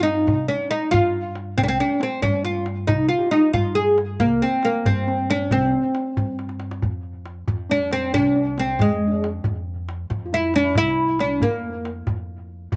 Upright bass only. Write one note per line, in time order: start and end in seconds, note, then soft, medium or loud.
0.00 0.23 G2 loud
0.27 0.47 C2 medium
0.93 1.54 G2 loud
1.58 1.78 C2 medium
2.23 2.85 G2 loud
2.89 3.09 C2 medium
3.54 4.16 G2 medium
4.20 4.40 C2 medium
4.86 5.47 G2 loud
5.51 5.71 C2 loud
6.17 6.79 G2 medium
6.83 7.44 F2 medium
7.48 8.10 F2 medium
8.14 8.75 C2 medium
8.79 9.41 F2 loud
9.45 10.07 F2 medium
10.10 10.72 F2 loud
10.76 11.38 C2 medium
11.42 12.03 F2 medium
12.08 12.69 F2 medium
12.72 12.76 F2 medium